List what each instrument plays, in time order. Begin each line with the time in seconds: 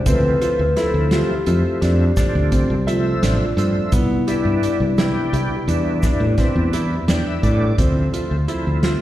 Already playing: vibraphone C5
0.06 fretless electric bass D2, tonewheel organ F3 A3 C4 E4, grand piano C4, vibraphone B4, kick, closed hi-hat, shaker
0.41 grand piano F4, closed hi-hat
0.59 fretless electric bass D2
0.76 tonewheel organ F3 A3 C4 E4, grand piano E4, vibraphone A4, snare, closed hi-hat
0.94 fretless electric bass D2
1.11 grand piano F4, vibraphone G4, snare, closed hi-hat
1.46 fretless electric bass F2, tonewheel organ F3 A3 C4 E4, grand piano F4, closed hi-hat
1.81 fretless electric bass F2, grand piano D4, snare, closed hi-hat
2.17 tonewheel organ F3 A3 C4 D4, grand piano D4, kick, snare, closed hi-hat, shaker
2.35 fretless electric bass D2
2.52 grand piano C4, kick, closed hi-hat
2.70 fretless electric bass C2
2.87 tonewheel organ F3 A3 C4 E5, vibraphone F4, grand piano E5, closed hi-hat
3.22 fretless electric bass A1, grand piano D4, snare, closed hi-hat
3.57 fretless electric bass G2, tonewheel organ F3 A3 C4 E5, grand piano D4, closed hi-hat
3.92 fretless electric bass C2, grand piano B3, vibraphone E4, kick, closed hi-hat, shaker
4.27 tonewheel organ G3 B3 D4 E4, grand piano E4, closed hi-hat, shaker
4.45 fretless electric bass G2
4.63 grand piano D4, closed hi-hat
4.80 fretless electric bass C2
4.98 tonewheel organ G3 B3 D4 G4, grand piano E4, snare, closed hi-hat, shaker
5.33 fretless electric bass C2, grand piano E4, closed hi-hat
5.68 fretless electric bass E2, tonewheel organ G3 B3 D4 E4, grand piano D4, closed hi-hat
6.03 grand piano D4, kick, snare, closed hi-hat, shaker
6.20 fretless electric bass A2
6.38 tonewheel organ G3 B3 D4 E4, grand piano C4, kick, snare, closed hi-hat
6.56 fretless electric bass E2
6.73 grand piano E4, closed hi-hat
7.08 fretless electric bass E2, tonewheel organ G3 B3 D4 E4 G5, grand piano D4, snare, closed hi-hat, shaker
7.26 tonewheel organ E5
7.43 fretless electric bass A2, grand piano D4, tonewheel organ D5, kick, closed hi-hat
7.78 fretless electric bass D2, tonewheel organ F3 A3 C4 E4, grand piano C4, kick, closed hi-hat
8.13 grand piano F4, closed hi-hat
8.31 fretless electric bass D2
8.48 tonewheel organ F3 A3 C4 E4, grand piano E4, closed hi-hat
8.67 fretless electric bass D2
8.83 grand piano F4, snare, closed hi-hat